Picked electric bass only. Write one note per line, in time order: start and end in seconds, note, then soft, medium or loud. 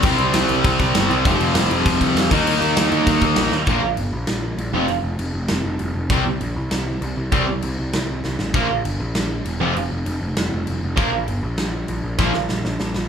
0.03 0.15 C2 loud
0.18 0.30 C2 loud
0.33 0.45 C2 loud
0.49 0.61 C2 loud
0.64 0.76 C2 loud
0.80 0.91 C2 loud
0.94 1.06 G1 medium
1.10 1.21 C2 loud
1.25 1.36 F1 medium
1.39 1.51 F1 medium
1.54 1.66 F1 loud
1.70 1.81 F1 loud
1.85 1.97 F1 medium
2.00 2.12 C2 loud
2.15 2.27 F2 loud
2.31 2.42 D#2 medium
2.45 2.57 D#2 loud
2.61 2.72 D#2 loud
2.76 2.88 D#2 medium
2.91 3.03 D#2 medium
3.06 3.18 D#2 loud
3.21 3.33 D#2 loud
3.36 3.48 A#1 loud
3.52 3.63 D#2 loud
3.67 3.80 A#1 medium
3.83 3.95 A#1 medium
3.98 4.10 G1 medium
4.13 4.25 A#1 loud
4.27 4.53 A#1 medium
4.57 4.70 A#1 medium
4.72 4.85 F1 medium
4.88 5.01 F1 medium
5.03 5.16 F1 medium
5.18 5.31 F1 medium
5.34 5.47 F1 loud
5.49 5.62 F1 loud
5.64 5.77 F1 loud
5.80 5.93 F1 medium
5.95 6.08 F1 loud
6.10 6.23 C2 medium
6.26 6.38 C2 loud
6.40 6.53 A#1 medium
6.56 6.69 C2 loud
6.71 6.96 C2 loud
7.01 7.14 C2 medium
7.17 7.30 C2 loud
7.32 7.45 C2 medium
7.48 7.61 C2 loud
7.64 7.76 C2 medium
7.79 7.91 C2 medium
7.94 8.06 C2 loud
8.09 8.21 C2 medium
8.24 8.36 C2 medium
8.39 8.52 A1 medium
8.54 8.66 A#1 medium
8.70 8.82 A#1 loud
8.85 8.97 G1 medium
9.00 9.12 A#1 medium
9.15 9.40 A#1 medium
9.45 9.60 E1 medium
9.60 9.73 F1 medium
9.76 9.88 F1 medium
9.91 10.03 F1 loud
10.06 10.18 F1 loud
10.22 10.34 F1 medium
10.37 10.49 F1 medium
10.52 10.65 F1 medium
10.68 10.80 F1 medium
10.83 10.95 F1 loud
10.97 11.10 A#1 medium
11.12 11.25 A#1 medium
11.28 11.40 G1 loud
11.43 11.55 A#1 loud
11.58 11.83 A#1 medium
11.88 12.01 A#1 medium
12.03 12.16 A#1 loud
12.19 12.31 A#1 medium
12.34 12.47 A#1 medium
12.50 12.62 A#1 medium
12.65 12.77 A#1 medium
12.80 12.92 A#1 medium
12.95 13.08 A#1 medium